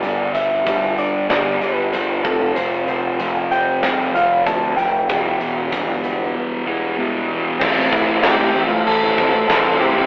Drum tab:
CC |--------|--------|--------|xxxxxxxx|
HH |xxxxxxxx|xxxxxxxx|xxxx----|--------|
SD |----o---|---oo--o|--------|--o---o-|
BD |--o----o|------o-|o-o-----|oo---o--|